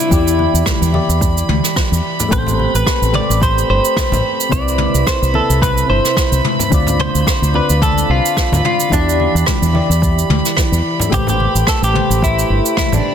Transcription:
Already playing: synth keys D3 C4 F4 D5, clean electric guitar E4, synth texture B5
0.09 fingered electric bass E2, synth keys E3 E4 G4, kick, cabasa
0.14 synth keys D5
0.28 cabasa
0.39 high conga
0.54 fingered electric bass E2, cabasa
0.66 kick, cross-stick, mid tom, cabasa
0.82 fingered electric bass E2, cabasa
0.92 synth keys E3 E4 G4 D5, high conga
1.09 fingered electric bass E2, cabasa
1.21 kick, cabasa
1.38 cabasa
1.49 fingered electric bass D2, mid tom
1.64 cross-stick, cabasa
1.76 kick, cross-stick, cabasa
1.92 fingered electric bass E2, cabasa
2.20 low conga, cabasa
2.29 fingered electric bass A1, synth keys A3 G4 A4, kick, mid tom, cabasa
2.33 clean electric guitar C5
2.47 low conga, cabasa
2.59 high conga
2.74 fingered electric bass A1, clean electric guitar B4, cabasa
2.86 kick, cross-stick, cabasa
3.02 fingered electric bass A1, cabasa
3.12 synth keys A3 G4 B4 C5, clean electric guitar D5, mid tom, high conga
3.30 fingered electric bass A1, cabasa
3.42 clean electric guitar C5, kick, cabasa
3.58 cabasa
3.69 fingered electric bass G1, clean electric guitar C5
3.85 cabasa
3.97 kick, cross-stick, mid tom, cabasa
4.12 fingered electric bass A1, high conga, low conga, cabasa
4.40 cabasa
4.49 fingered electric bass C2, synth keys C3 C4 E4, clean electric guitar D5, kick, cabasa
4.54 synth keys B4
4.68 cabasa
4.78 mid tom, high conga
4.94 fingered electric bass C2, cabasa
5.07 clean electric guitar C5, kick, cross-stick, cabasa
5.22 fingered electric bass C2, cabasa
5.33 synth keys C3 C4 E4 B4, clean electric guitar A4, high conga
5.49 fingered electric bass C2, cabasa
5.62 clean electric guitar B4, kick, mid tom, cabasa
5.78 cabasa
5.86 fingered electric bass G1, synth keys C3 C4 E4, clean electric guitar C5
5.92 synth keys C5
6.05 cross-stick, cabasa
6.17 kick, cross-stick, cabasa
6.32 fingered electric bass C2, cabasa
6.44 mid tom
6.59 low conga, cabasa
6.69 fingered electric bass D2, synth keys D3 C4 F4, kick, cabasa
6.74 synth keys D5
6.87 low conga, cabasa
6.99 clean electric guitar C5, mid tom, high conga
7.15 fingered electric bass D2, cabasa
7.27 clean electric guitar C5, kick, cross-stick, cabasa
7.42 fingered electric bass D2, cabasa
7.53 synth keys D3 C4 F4 D5, clean electric guitar B4, high conga
7.70 fingered electric bass D2, cabasa
7.82 clean electric guitar A4, kick, mid tom, cabasa
7.98 cabasa
8.09 fingered electric bass C2, clean electric guitar F4
8.26 cabasa
8.37 kick, cross-stick, cabasa
8.52 fingered electric bass D2, high conga, low conga, cabasa
8.65 clean electric guitar F4, mid tom
8.80 cabasa
8.89 fingered electric bass E2, synth keys E3 E4 G4, clean electric guitar D4, kick, cabasa
8.94 synth keys D5
9.09 cabasa
9.20 high conga
9.35 fingered electric bass E2, cabasa
9.46 kick, cross-stick, mid tom, cabasa
9.62 fingered electric bass E2, cabasa
9.73 synth keys E3 E4 G4 D5, high conga
9.89 fingered electric bass E2, cabasa
10.02 kick, cabasa
10.19 cabasa
10.29 fingered electric bass D2, mid tom
10.45 cross-stick, cabasa
10.57 kick, cross-stick, cabasa
10.72 fingered electric bass E2, cabasa
10.99 low conga, cabasa
11.09 fingered electric bass A1, synth keys A3 G4 B4, kick, mid tom, cabasa
11.14 clean electric guitar G4, synth keys C5
11.27 clean electric guitar G4, low conga, cabasa
11.40 high conga
11.55 fingered electric bass A1, cabasa
11.67 clean electric guitar A4, kick, cross-stick, cabasa
11.82 fingered electric bass A1, clean electric guitar G4, cabasa
11.94 synth keys A3 G4 B4 C5, mid tom, high conga
12.10 fingered electric bass A1, cabasa
12.22 clean electric guitar E4, kick, cabasa
12.39 cabasa
12.50 fingered electric bass G1
12.66 cabasa
12.77 clean electric guitar E4, kick, cross-stick, mid tom, cabasa
12.92 fingered electric bass A1, clean electric guitar D4, high conga, low conga, cabasa

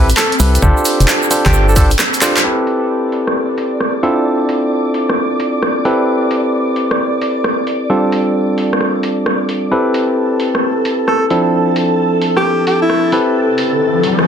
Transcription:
Already playing: fm bass A1, string machine C4 B5
0.09 closed hi-hat, shaker
0.17 alto saxophone A4, cross-stick, clap, shaker
0.32 closed hi-hat
0.40 fm bass C2, tine electric piano C4 E4 G4 A4 B4, open hi-hat, shaker
0.55 closed hi-hat, shaker
0.62 fm bass G1, tine electric piano D4 F4 G4 A4 C5, kick, shaker
0.77 shaker
0.85 open hi-hat, shaker
1.00 fm bass F1, closed hi-hat, shaker
1.08 clap, shaker
1.23 shaker
1.31 tine electric piano D4 F4 G4 A4 C5, open hi-hat, shaker
1.45 fm bass G1, tine electric piano D4 F4 G4 A4 C5, alto saxophone G4, kick, cross-stick, clap, closed hi-hat, shaker
1.53 cross-stick, shaker
1.69 alto saxophone A4, shaker
1.76 tine electric piano D4 F4 G4 A4 C5, alto saxophone A4, kick, open hi-hat, shaker
1.90 closed hi-hat, shaker
1.99 cross-stick, clap, shaker
2.14 closed hi-hat, shaker
2.21 tine electric piano D4 F4 G4 A4 C5, clap, open hi-hat, shaker
2.37 clap, closed hi-hat, shaker
2.44 tine electric piano C4 E4 G4 A4 B4, string machine D5 D6
2.67 open hi-hat
3.12 open hi-hat
3.27 cross-stick
3.58 open hi-hat
3.80 cross-stick
4.03 tine electric piano C4 D4 E4 F4 A4, open hi-hat
4.49 open hi-hat
4.94 open hi-hat
5.09 cross-stick
5.40 open hi-hat
5.63 cross-stick
5.85 tine electric piano C4 E4 G4 A4 B4, open hi-hat
6.31 open hi-hat
6.76 open hi-hat
6.91 cross-stick
7.22 open hi-hat
7.44 cross-stick
7.67 open hi-hat
7.90 tine electric piano G3 C4 D4 F4 A4
8.12 open hi-hat
8.58 open hi-hat
8.73 cross-stick
8.81 cross-stick
9.03 open hi-hat
9.26 cross-stick
9.49 open hi-hat
9.71 tine electric piano C4 E4 G4 A4 B4, string machine A4 A5
9.94 open hi-hat
10.40 open hi-hat
10.55 cross-stick
10.85 open hi-hat
11.08 alto saxophone A4, cross-stick
11.30 tine electric piano F3 C4 D4 E4 A4, open hi-hat
11.76 open hi-hat
12.22 open hi-hat
12.37 alto saxophone G4, cross-stick
12.67 alto saxophone G4, open hi-hat
12.82 alto saxophone E4
12.90 cross-stick
13.12 tine electric piano C4 E4 G4 A4 B4, open hi-hat
13.35 riser
13.58 open hi-hat
14.03 open hi-hat
14.19 cross-stick

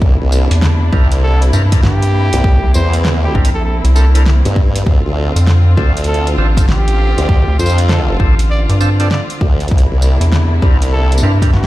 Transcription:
0.02 wobble bass C2, string section C3 A#3 D4 E4, kick
0.21 wobble bass C2
0.32 tambourine
0.51 analog synth bass E2, closed hi-hat
0.62 snare
0.92 wobble bass C2, tonewheel organ C4 D4 E4 A#4, kick, snare
1.12 closed hi-hat
1.23 trumpet A4
1.42 closed hi-hat
1.53 analog synth bass G2, tonewheel organ C4 D4 E4 A#4, tambourine
1.72 tonewheel organ C4 D4 E4 A#4, kick, closed hi-hat
1.83 analog synth bass G2, trumpet G4, snare
2.02 closed hi-hat
2.33 wobble bass C2, closed hi-hat
2.44 wobble bass C2, string section C4, kick
2.63 analog synth bass C2
2.74 wobble bass E2, trumpet C5, tambourine
2.93 closed hi-hat
3.05 snare
3.16 wobble bass D#2
3.24 trumpet G4
3.35 analog synth bass A#1, tonewheel organ C4 D4 E4 A#4, kick
3.45 closed hi-hat
3.54 trumpet A4
3.65 trumpet A4
3.84 analog synth bass C2, closed hi-hat
3.95 tonewheel organ C4 D4 E4 A#4, trumpet A4, tambourine
4.15 tonewheel organ C4 D4 E4 A#4, trumpet A4, closed hi-hat
4.26 snare
4.45 wobble bass G2, closed hi-hat
4.56 kick
4.76 closed hi-hat
4.86 wobble bass D2, string section D3 F4, kick
5.06 wobble bass D2
5.36 analog synth bass F2, closed hi-hat, tambourine
5.47 snare
5.77 wobble bass D2, tonewheel organ C4 D4 F4 A4, kick, snare
5.97 closed hi-hat
6.04 trumpet A4, closed hi-hat
6.14 closed hi-hat
6.27 closed hi-hat
6.38 analog synth bass A1, tonewheel organ C4 D4 F4 A4
6.57 tonewheel organ C4 D4 F4 A4, kick, closed hi-hat, tambourine
6.68 analog synth bass A1, trumpet G4, snare
6.88 closed hi-hat
7.17 wobble bass D2, closed hi-hat
7.29 wobble bass D2, kick
7.48 analog synth bass D2
7.59 wobble bass F2, trumpet C5, tambourine
7.66 tambourine
7.69 tambourine
7.78 closed hi-hat
7.89 trumpet A4, snare
8.09 trumpet A4
8.20 analog synth bass A1, tonewheel organ C4 D4 F4 A4, kick
8.39 closed hi-hat
8.50 trumpet D5
8.69 analog synth bass G2, trumpet D5, closed hi-hat
8.81 tonewheel organ C4 D4 F4 A4, tambourine
9.00 tonewheel organ C4 D4 F4 A4, trumpet D5, closed hi-hat
9.11 trumpet D5, snare
9.30 closed hi-hat
9.41 wobble bass D2, kick
9.60 closed hi-hat
9.68 wobble bass C2, string section C3 A#3 D4 E4, kick, closed hi-hat
9.78 closed hi-hat
9.91 wobble bass C2
10.02 tambourine
10.21 analog synth bass E2, closed hi-hat
10.32 snare
10.62 wobble bass C2, tonewheel organ C4 D4 E4 A#4, kick, snare
10.82 closed hi-hat
10.93 trumpet A4
11.12 closed hi-hat
11.18 tambourine
11.23 analog synth bass G2, tonewheel organ C4 D4 E4 A#4
11.42 tonewheel organ C4 D4 E4 A#4, kick, closed hi-hat
11.53 analog synth bass G2, trumpet G4, snare
11.64 snare

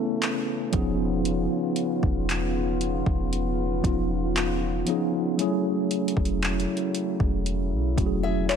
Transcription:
Already playing: french horn section C#3 E3 A3, tine electric piano A3 B3 C#4 E4 A4
0.22 clap, closed hi-hat
0.72 808-style bass E1, tine electric piano F3 B3 C#4 D#4 G#4, french horn section B3 F4, kick, closed hi-hat
1.25 closed hi-hat
1.76 closed hi-hat
2.03 808-style bass E1, kick
2.30 clap, closed hi-hat
2.81 closed hi-hat
3.06 808-style bass E1, kick
3.33 closed hi-hat
3.82 808-style bass E1, tine electric piano F3 B3 C#4 D#4 F4, kick, closed hi-hat
4.36 clap, closed hi-hat
4.86 tine electric piano F3 B3 C#4 D#4 G#4, closed hi-hat
5.37 tine electric piano F#3 A3 C#4 E4 G#4, french horn section F#3 A3 E4, closed hi-hat
5.91 closed hi-hat
6.08 closed hi-hat
6.17 808-style bass E1, kick
6.25 closed hi-hat
6.42 clap, closed hi-hat
6.60 closed hi-hat
6.77 closed hi-hat
6.95 closed hi-hat
7.20 808-style bass E1, kick
7.46 french horn section E4, closed hi-hat
7.72 808-style bass B1
7.96 808-style bass E1, tine electric piano F#3 A3 C#4 E4 F#4, kick, closed hi-hat
8.06 tine electric piano G#4
8.23 nylon-string guitar G#4 E5
8.49 nylon-string guitar E4 C#5, tine electric piano B4 E5, clap, closed hi-hat

